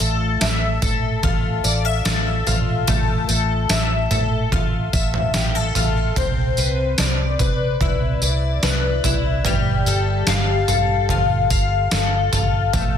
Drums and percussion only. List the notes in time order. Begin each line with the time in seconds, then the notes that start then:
0.00 tambourine
0.41 snare, tambourine
0.82 kick, floor tom, tambourine
1.23 kick, floor tom
1.65 tambourine
2.05 snare, tambourine
2.47 floor tom, tambourine
2.88 floor tom, tambourine
3.29 tambourine
3.69 snare, tambourine
4.11 floor tom, tambourine
4.52 kick, floor tom
4.93 kick, tambourine
5.14 floor tom
5.34 snare, tambourine
5.75 floor tom, tambourine
6.16 kick, floor tom, tambourine
6.57 tambourine
6.98 snare, tambourine
7.39 kick, floor tom, tambourine
7.81 kick, floor tom
8.22 tambourine
8.63 snare, tambourine
9.04 floor tom, tambourine
9.45 floor tom, tambourine
9.86 tambourine
10.27 snare, tambourine
10.68 floor tom, tambourine
11.09 floor tom
11.50 kick, tambourine
11.91 snare, tambourine
12.33 floor tom, tambourine
12.73 kick, floor tom, tambourine